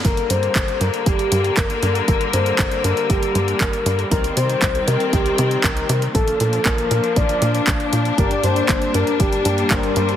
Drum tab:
HH |xxxxxxxxxxxxxxxx|xxxxxxxxxxxxxxxx|xxxxxxxxxxxxxxxx|xxxxxxxxxxxxxxxx|
CP |----x-------x---|----x-------x---|----x-------x---|----x-------x---|
BD |o---o---o---o---|o---o---o---o---|o---o---o---o---|o---o---o---o---|

HH |xxxxxxxxxxxxxxxx|
CP |----x-------x---|
BD |o---o---o---o---|